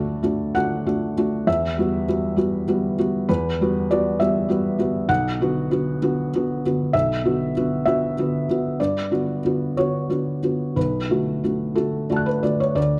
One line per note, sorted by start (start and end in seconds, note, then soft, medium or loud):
0.00 1.50 D2 soft
0.00 0.20 A3 soft
0.00 0.20 D4 soft
0.00 0.20 F#4 soft
0.00 0.55 A4 medium
0.23 0.52 A3 soft
0.23 0.52 D4 soft
0.23 0.52 F#4 soft
0.55 0.84 A3 soft
0.55 0.84 D4 soft
0.55 0.84 F#4 soft
0.55 1.47 F#5 medium
0.86 1.14 A3 soft
0.86 1.14 D4 soft
0.86 1.14 F#4 soft
1.18 1.45 A3 soft
1.18 1.45 D4 soft
1.18 1.45 F#4 soft
1.47 1.77 E2 soft
1.47 3.29 E5 medium
1.78 2.05 G3 soft
1.78 2.05 B3 soft
1.78 2.06 F#4 soft
2.08 2.35 G3 soft
2.08 2.35 B3 soft
2.08 2.35 F#4 soft
2.36 2.64 G3 soft
2.36 2.65 B3 soft
2.36 2.65 F#4 soft
2.68 2.95 G3 soft
2.68 2.95 B3 soft
2.68 2.95 F#4 soft
2.98 3.26 G3 soft
2.98 3.26 B3 soft
2.98 3.26 F#4 soft
3.29 3.59 E2 soft
3.29 3.89 B4 medium
3.61 3.87 G3 soft
3.61 3.87 B3 soft
3.61 3.88 F#4 soft
3.91 4.17 G3 soft
3.91 4.17 B3 soft
3.91 4.18 F#4 soft
3.91 4.20 D5 medium
4.20 4.47 G3 soft
4.20 4.47 B3 soft
4.20 4.47 F#4 soft
4.20 5.10 E5 medium
4.49 4.76 G3 soft
4.49 4.76 B3 soft
4.49 4.76 F#4 soft
4.78 5.06 G3 soft
4.78 5.06 B3 soft
4.78 5.06 F#4 soft
5.09 5.38 B1 soft
5.09 6.93 F#5 medium
5.41 5.68 D3 soft
5.41 5.68 B3 soft
5.41 5.68 F#4 soft
5.71 5.99 D3 soft
5.71 5.98 B3 soft
5.71 5.99 F#4 soft
6.02 6.30 D3 soft
6.02 6.30 B3 soft
6.02 6.30 F#4 soft
6.35 6.62 D3 soft
6.35 6.61 B3 soft
6.35 6.62 F#4 soft
6.66 6.92 D3 soft
6.66 6.92 B3 soft
6.66 6.92 F#4 soft
6.93 7.23 B1 soft
6.93 7.84 E5 medium
7.24 7.51 D3 soft
7.24 7.52 B3 soft
7.24 7.52 F#4 soft
7.57 7.84 D3 soft
7.57 7.83 B3 soft
7.57 7.84 F#4 soft
7.86 8.14 D3 soft
7.86 8.14 B3 soft
7.86 8.15 F#4 soft
7.86 8.79 E5 medium
8.19 8.46 D3 soft
8.19 8.46 B3 soft
8.19 8.46 F#4 soft
8.49 8.76 D3 soft
8.49 8.77 B3 soft
8.49 8.77 F#4 soft
8.80 9.10 G2 soft
8.80 9.76 D5 medium
9.11 9.40 D3 soft
9.11 9.40 B3 soft
9.11 9.40 F#4 soft
9.45 9.73 D3 soft
9.45 9.74 B3 soft
9.45 9.74 F#4 soft
9.77 10.07 D3 soft
9.77 10.07 B3 soft
9.77 10.07 F#4 soft
9.77 10.77 C#5 medium
10.09 10.39 D3 soft
10.09 10.39 B3 soft
10.09 10.40 F#4 soft
10.43 10.73 D3 soft
10.43 10.73 B3 soft
10.43 10.73 F#4 soft
10.76 11.09 B1 soft
10.76 12.25 B4 soft
11.10 11.40 D3 soft
11.10 11.41 A3 soft
11.10 11.41 F#4 soft
11.43 11.74 D3 soft
11.43 11.74 A3 soft
11.43 11.74 F#4 soft
11.75 12.06 D3 soft
11.75 12.06 A3 soft
11.75 12.06 F#4 soft
11.75 12.26 A4 soft
12.10 12.40 D3 soft
12.10 12.41 A3 soft
12.10 12.41 F#4 soft
12.10 12.41 D5 soft
12.10 12.74 A5 soft
12.16 12.76 F#6 soft
12.26 12.43 B4 soft
12.43 12.73 D3 soft
12.43 12.73 A3 soft
12.43 12.74 F#4 soft
12.43 12.60 D5 soft
12.60 12.76 C#5 soft
12.75 13.00 D2 soft
12.75 13.00 D5 medium